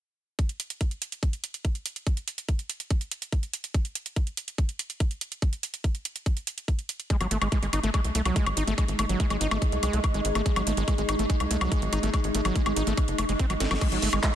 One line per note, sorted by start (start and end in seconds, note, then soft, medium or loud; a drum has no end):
0.39 kick loud
0.39 closed hi-hat medium
0.49 closed hi-hat soft
0.60 closed hi-hat medium
0.70 closed hi-hat soft
0.81 kick loud
0.81 closed hi-hat medium
0.91 closed hi-hat soft
1.02 closed hi-hat medium
1.12 closed hi-hat soft
1.23 kick loud
1.23 closed hi-hat medium
1.33 closed hi-hat soft
1.44 closed hi-hat medium
1.54 closed hi-hat soft
1.65 kick loud
1.65 closed hi-hat medium
1.75 closed hi-hat soft
1.86 closed hi-hat loud
1.96 closed hi-hat soft
2.07 kick loud
2.07 closed hi-hat medium
2.17 closed hi-hat soft
2.28 closed hi-hat medium
2.38 closed hi-hat soft
2.49 kick loud
2.49 closed hi-hat medium
2.59 closed hi-hat soft
2.70 closed hi-hat medium
2.80 closed hi-hat soft
2.90 kick loud
2.90 closed hi-hat medium
3.01 closed hi-hat soft
3.11 closed hi-hat medium
3.22 closed hi-hat soft
3.32 kick loud
3.32 closed hi-hat medium
3.43 closed hi-hat soft
3.53 closed hi-hat medium
3.64 closed hi-hat soft
3.74 kick loud
3.74 closed hi-hat medium
3.85 closed hi-hat soft
3.95 closed hi-hat medium
4.06 closed hi-hat soft
4.16 kick loud
4.16 closed hi-hat medium
4.27 closed hi-hat soft
4.37 closed hi-hat medium
4.48 closed hi-hat soft
4.58 kick loud
4.58 closed hi-hat medium
4.69 closed hi-hat soft
4.79 closed hi-hat medium
4.90 closed hi-hat soft
5.00 kick loud
5.00 closed hi-hat medium
5.11 closed hi-hat soft
5.21 closed hi-hat medium
5.32 closed hi-hat soft
5.42 kick loud
5.42 closed hi-hat medium
5.53 closed hi-hat soft
5.63 closed hi-hat medium
5.74 closed hi-hat soft
5.84 kick loud
5.84 closed hi-hat medium
5.95 closed hi-hat soft
6.05 closed hi-hat medium
6.16 closed hi-hat soft
6.26 kick loud
6.26 closed hi-hat medium
6.37 closed hi-hat soft
6.47 closed hi-hat medium
6.58 closed hi-hat soft
6.68 kick loud
6.68 closed hi-hat medium
6.79 closed hi-hat soft
6.89 closed hi-hat medium
7.00 closed hi-hat soft
7.10 13.80 G#3 medium
7.10 7.17 G#3 medium
7.10 13.80 D#4 medium
7.10 kick loud
7.10 closed hi-hat medium
7.21 7.27 G#1 medium
7.21 7.27 F#3 medium
7.21 closed hi-hat soft
7.21 high woodblock soft
7.31 7.38 G#1 loud
7.31 7.38 A3 medium
7.31 closed hi-hat medium
7.42 7.48 G#1 medium
7.42 7.48 G#3 medium
7.42 closed hi-hat soft
7.42 high woodblock medium
7.52 7.59 G#3 loud
7.52 kick loud
7.52 closed hi-hat medium
7.62 7.69 G#1 medium
7.62 7.66 G#3 medium
7.62 closed hi-hat soft
7.73 7.80 G#1 loud
7.73 7.80 D#4 medium
7.73 closed hi-hat medium
7.73 high woodblock soft
7.83 7.90 G#1 medium
7.83 7.90 A3 loud
7.83 closed hi-hat soft
7.94 8.00 G#3 medium
7.94 kick loud
7.94 closed hi-hat medium
7.94 high woodblock medium
8.04 8.11 C2 medium
8.04 closed hi-hat soft
8.15 8.22 C2 loud
8.15 8.21 A3 medium
8.15 closed hi-hat medium
8.25 8.32 C2 medium
8.25 8.35 F#3 medium
8.25 closed hi-hat soft
8.25 high woodblock soft
8.36 8.46 G#3 medium
8.36 kick loud
8.36 closed hi-hat medium
8.46 8.53 G#1 medium
8.46 closed hi-hat soft
8.46 high woodblock medium
8.57 8.63 G#1 medium
8.57 8.63 D#4 medium
8.57 closed hi-hat medium
8.67 8.74 G#1 medium
8.67 8.74 A3 loud
8.67 closed hi-hat soft
8.78 8.84 G#3 medium
8.78 kick loud
8.78 closed hi-hat medium
8.78 high woodblock soft
8.88 8.95 G#1 medium
8.88 closed hi-hat soft
8.99 9.05 G#1 loud
8.99 9.05 A3 medium
8.99 closed hi-hat medium
8.99 high woodblock medium
9.09 9.16 G#1 medium
9.09 9.19 F#3 medium
9.09 closed hi-hat soft
9.20 9.26 G#3 medium
9.20 kick loud
9.20 closed hi-hat medium
9.30 9.37 G#1 medium
9.30 9.37 G#3 medium
9.30 closed hi-hat soft
9.30 high woodblock soft
9.41 9.47 G#1 loud
9.41 9.47 D#4 medium
9.41 closed hi-hat medium
9.51 9.58 G#1 medium
9.51 9.58 A3 loud
9.51 closed hi-hat soft
9.51 high woodblock medium
9.62 kick loud
9.62 closed hi-hat medium
9.72 9.79 C2 medium
9.72 closed hi-hat soft
9.83 9.89 C2 loud
9.83 9.95 G#3 medium
9.83 closed hi-hat medium
9.83 high woodblock soft
9.93 10.00 C2 medium
9.93 10.00 A3 medium
9.93 closed hi-hat soft
10.04 kick loud
10.04 closed hi-hat medium
10.04 high woodblock medium
10.14 10.21 G#1 medium
10.14 10.21 G#3 medium
10.14 closed hi-hat soft
10.25 10.31 G#1 loud
10.25 closed hi-hat medium
10.35 10.42 G#1 medium
10.35 10.42 A3 loud
10.35 closed hi-hat soft
10.35 high woodblock soft
10.46 10.52 G#3 medium
10.46 kick loud
10.46 closed hi-hat medium
10.56 10.63 G#1 medium
10.56 10.63 F#3 medium
10.56 closed hi-hat soft
10.56 high woodblock medium
10.67 10.73 G#1 loud
10.67 10.73 A3 medium
10.67 closed hi-hat loud
10.77 10.84 G#1 loud
10.77 10.84 G#3 medium
10.77 closed hi-hat soft
10.88 10.94 G#3 loud
10.88 kick loud
10.88 closed hi-hat medium
10.88 high woodblock soft
10.98 11.05 G#1 medium
10.98 11.02 G#3 medium
10.98 closed hi-hat soft
11.09 11.15 G#1 loud
11.09 11.15 D#4 medium
11.09 closed hi-hat medium
11.09 high woodblock medium
11.19 11.26 G#1 medium
11.19 11.26 A3 loud
11.19 closed hi-hat soft
11.30 11.36 G#3 medium
11.30 kick loud
11.30 closed hi-hat medium
11.40 11.47 C2 medium
11.40 closed hi-hat soft
11.40 high woodblock soft
11.51 11.57 C2 loud
11.51 11.57 A3 medium
11.51 closed hi-hat medium
11.61 11.68 C2 medium
11.61 11.71 F#3 medium
11.61 closed hi-hat soft
11.61 high woodblock medium
11.72 11.81 G#3 medium
11.72 kick loud
11.72 closed hi-hat medium
11.82 11.89 G#1 medium
11.82 closed hi-hat soft
11.93 11.99 G#1 loud
11.93 11.99 D#4 medium
11.93 closed hi-hat medium
11.93 high woodblock soft
12.03 12.10 G#1 medium
12.03 12.10 A3 loud
12.03 closed hi-hat soft
12.14 12.20 G#3 medium
12.14 kick loud
12.14 closed hi-hat medium
12.14 high woodblock medium
12.24 12.31 G#1 medium
12.24 closed hi-hat soft
12.35 12.41 G#1 loud
12.35 12.41 A3 medium
12.35 closed hi-hat medium
12.45 12.52 G#1 medium
12.45 12.55 F#3 medium
12.45 closed hi-hat soft
12.45 high woodblock soft
12.56 12.62 G#3 medium
12.56 kick loud
12.56 closed hi-hat medium
12.66 12.73 G#1 medium
12.66 12.73 G#3 medium
12.66 closed hi-hat soft
12.66 high woodblock medium
12.77 12.83 G#1 loud
12.77 12.83 D#4 medium
12.77 closed hi-hat medium
12.87 12.94 G#1 medium
12.87 12.94 A3 loud
12.87 closed hi-hat soft
12.97 kick loud
12.97 closed hi-hat medium
12.97 high woodblock soft
13.08 13.15 F#1 medium
13.08 closed hi-hat soft
13.18 13.25 F#1 medium
13.18 13.25 A3 medium
13.18 closed hi-hat medium
13.18 high woodblock medium
13.29 13.36 F#1 medium
13.29 13.33 G#3 medium
13.29 closed hi-hat soft
13.39 13.46 C4 medium
13.39 kick loud
13.39 closed hi-hat medium
13.50 13.56 G#1 medium
13.50 13.54 F#3 medium
13.50 closed hi-hat soft
13.50 high woodblock soft
13.60 13.67 G#1 loud
13.60 snare medium
13.60 closed hi-hat loud
13.71 13.77 G#1 medium
13.71 13.75 F#3 medium
13.71 snare medium
13.71 closed hi-hat soft
13.71 high woodblock medium
13.81 13.88 G#3 medium
13.81 kick loud
13.81 closed hi-hat medium
13.81 crash medium
13.81 high woodblock soft
13.92 13.98 G#1 medium
13.92 13.98 F#3 medium
13.92 closed hi-hat soft
14.02 14.09 G#1 loud
14.02 14.09 A3 medium
14.02 open hi-hat loud
14.13 14.19 G#1 loud
14.13 14.19 G#3 medium
14.13 closed hi-hat soft
14.13 high woodblock medium
14.23 14.30 G#3 loud
14.23 kick loud
14.23 clap loud
14.23 closed hi-hat medium